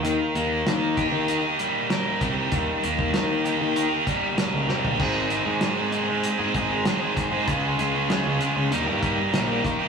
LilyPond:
<<
  \new Staff \with { instrumentName = "Overdriven electric guitar" } { \time 4/4 \key ees \mixolydian \tempo 4 = 97 ees8 bes8 bes8 g'8 bes'8 g'8 bes'8 g8 | ees8 bes8 bes8 g'8 bes'8 g'8 bes'8 g8 | <aes c' ees' aes'>8. <c' ees' aes'>16 <aes c' ees' aes'>8 <aes c' ees' aes'>8. <c' ees' aes'>16 <aes c' ees' aes'>8 <aes c' ees' aes'>16 <c' ees' aes'>16 <aes c' ees' aes'>8 | <des aes des' f' aes'>8. <des' f' aes'>16 <des aes des' f' aes'>8 <aes des' f' aes'>8 <ees g bes ees' g'>16 <bes ees' g'>16 <g bes ees' g'>8 <ees g bes ees' g'>16 <bes ees' g'>16 <g bes ees' g'>8 | }
  \new Staff \with { instrumentName = "Overdriven electric guitar" } { \time 4/4 \key ees \mixolydian ees8 bes8 ees'8 g'8 ees'8 g8 ees'8 g'8 | ees8 bes8 ees'8 g'8 ees'8 g8 ees'8 g'8 | <aes, ees aes c' ees' aes'>8 <aes c' ees' aes'>8 <aes, ees aes c' ees' aes'>16 <aes c' ees' aes'>16 <aes c' ees' aes'>16 <aes c' ees' aes'>8 <aes c' ees' aes'>16 <aes c' ees' aes'>8 <aes, ees aes c' ees' aes'>16 <aes c' ees' aes'>8 <aes c' ees' aes'>16 | <des aes des' f' aes'>8 <aes des' f' aes'>8 <des aes des' f' aes'>16 <des' f' aes'>16 <aes des' f' aes'>16 <des' f' aes'>16 <ees g bes ees' g'>16 <bes ees' g'>16 <g bes ees' g'>8 <ees g bes ees' g'>16 <bes ees' g'>8 <bes ees' g'>16 | }
  \new Staff \with { instrumentName = "Picked electric bass" } { \clef bass \time 4/4 \key ees \mixolydian ees,16 r16 ees,8 ees8. ees8 r4 r16 c,8 | ees,16 r16 ees,8 ees8. ees8 r4 des,16 c,16 bes,,16 | aes,,8. aes,4. aes,16 aes,,8 r8. aes,16 | des,8 des,8. des,16 r16 des,16 ees,16 g,8. bes,,8 r8 | }
  \new DrumStaff \with { instrumentName = "Drums" } \drummode { \time 4/4 hh8 hh8 <hh sn>8 <hh bd>8 hh8 hh8 <hh sn>8 <hh bd>8 | <hh bd>8 hh16 bd16 <hh sn>8 hh8 hh8 <hh bd>8 <hh sn>8 sn16 tomfh16 | <cymc bd>8 hh8 <hh sn>8 hh8 hh8 <hh bd>8 <hh sn>8 <hh bd sn>8 | <hh bd>8 hh8 <hh sn>8 hh8 hh8 <hh bd>8 <hh sn>8 <hh bd sn>8 | }
>>